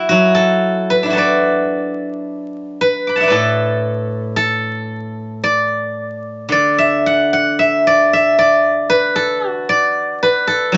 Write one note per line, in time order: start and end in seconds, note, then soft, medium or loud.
0.00 1.05 E4 medium
0.09 3.31 F#3 medium
0.09 1.10 F#4 medium
0.35 1.12 A4 medium
0.90 1.17 B4 medium
1.03 3.83 D4 soft
1.03 3.66 E4 soft
1.10 3.53 F#4 soft
1.10 3.31 A4 soft
1.17 2.81 B4 medium
1.17 3.03 D5 medium
2.81 3.27 B4 medium
3.07 4.44 B5 soft
3.07 4.29 D6 soft
3.16 4.77 F#5 soft
3.16 4.60 A5 soft
3.20 5.08 D5 soft
3.20 4.92 E5 soft
3.28 6.51 A2 medium
3.28 5.32 B4 medium
3.32 4.36 A4 medium
4.36 6.56 A4 medium
5.44 6.52 D5 medium
6.49 9.69 D3 medium
6.49 7.86 D5 medium
6.78 7.59 E5 medium
7.06 7.33 F#5 medium
7.33 8.93 F#5 medium
7.59 8.13 E5 medium
7.87 8.38 D5 medium
8.13 9.85 E5 medium
8.39 9.69 D5 medium
8.90 10.22 B4 medium
9.16 9.49 A4 medium
9.49 10.47 F#4 medium
9.69 10.77 D5 medium
10.23 10.77 B4 medium
10.47 10.77 A4 medium
10.72 10.77 F#3 medium